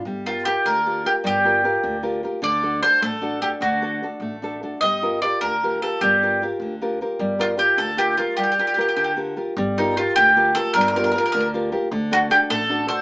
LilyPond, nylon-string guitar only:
\new Staff \with { instrumentName = "Nylon-string guitar" } { \time 6/8 \key g \minor \tempo 4. = 102 g8 <f' g' bes'>8 <f' g' bes'>8 d8 <f' g' bes'>8 <f' g' bes'>8 | g8 <f' g' bes'>8 <f' g' bes'>8 d8 <f' g' bes'>8 <f' g' bes'>8 | d8 <d' fis' a'>8 <d' fis' a'>8 a8 <d' fis' a'>8 <d' fis' a'>8 | d8 <d' fis' a'>8 <d' fis' a'>8 a8 <d' fis' a'>8 <d' fis' a'>8 |
g8 <f' g' bes'>8 <f' g' bes'>8 d8 <f' g' bes'>8 <f' g' bes'>8 | g8 <f' g' bes'>8 <f' g' bes'>8 d8 <f' g' bes'>8 <f' g' bes'>8 | g8 <f' g' bes'>8 <f' g' bes'>8 d8 <f' g' bes'>8 <f' g' bes'>8 | g8 <f' g' bes'>8 <f' g' bes'>8 d8 <f' g' bes'>8 <f' g' bes'>8 |
g8 <f' g' bes'>8 <f' g' bes'>8 d8 <f' g' bes'>8 <f' g' bes'>8 | g8 <f' g' bes'>8 <f' g' bes'>8 d8 <f' g' bes'>8 <f' g' bes'>8 | d8 <d' fis' a'>8 <d' fis' a'>8 a8 <d' fis' a'>8 <d' fis' a'>8 | }